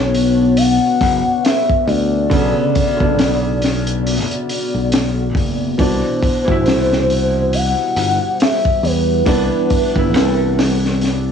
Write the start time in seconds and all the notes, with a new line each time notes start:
Already playing: B1 D3 B3 C#4 D4 F#4 B4 C#5
0.14 open hi-hat
0.57 F#5, open hi-hat
1.01 F#1, kick, open hi-hat
1.43 E5, snare, open hi-hat
1.70 kick
1.87 D2 D5, open hi-hat
2.30 B1 C#3 D3 B3 D5, kick, open hi-hat
2.75 kick, open hi-hat
2.97 F#1 D3 B3, kick
3.03 D4
3.19 B1, snare, open hi-hat
3.62 snare, open hi-hat
3.87 closed hi-hat
4.07 open hi-hat
4.31 closed hi-hat
4.49 open hi-hat
4.74 B1
4.92 snare, open hi-hat
5.35 F#1, kick, open hi-hat
5.78 C2 B2 E3 G3 D4 E4 G4 C5, kick, open hi-hat
6.22 kick, open hi-hat
6.45 G1 B2 E3, kick
6.51 E4
6.65 C2, snare, open hi-hat
6.92 snare
7.10 open hi-hat
7.53 F#5, open hi-hat
7.96 G1, open hi-hat
8.40 E5, snare, open hi-hat
8.65 kick
8.83 E2 B4, open hi-hat
9.26 C2 E3 B3 D4, kick, open hi-hat
9.70 kick, open hi-hat
9.92 G1 E3 B3, kick
9.99 E4
10.14 C2, snare, open hi-hat
10.59 snare, open hi-hat
10.85 snare
11.01 snare, open hi-hat